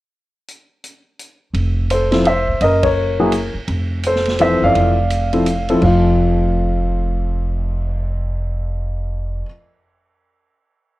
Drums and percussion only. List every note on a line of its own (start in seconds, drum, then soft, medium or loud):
0.48 closed hi-hat soft
0.84 closed hi-hat medium
1.19 closed hi-hat soft
1.54 ride soft
1.90 hi-hat pedal soft
1.90 ride medium
2.12 snare soft
2.12 ride soft
2.25 ride soft
2.48 kick soft
2.61 ride soft
2.83 kick medium
2.83 ride medium
3.32 hi-hat pedal soft
3.32 ride medium
3.68 ride soft
4.03 hi-hat pedal medium
4.03 ride medium
4.16 snare soft
4.25 snare soft
4.25 ride soft
4.39 ride soft
4.75 ride soft
5.10 hi-hat pedal soft
5.10 ride medium
5.33 ride soft
5.46 hi-hat pedal medium
5.46 ride medium
5.68 ride soft
5.82 kick soft
5.82 crash soft
6.05 cymbal swell soft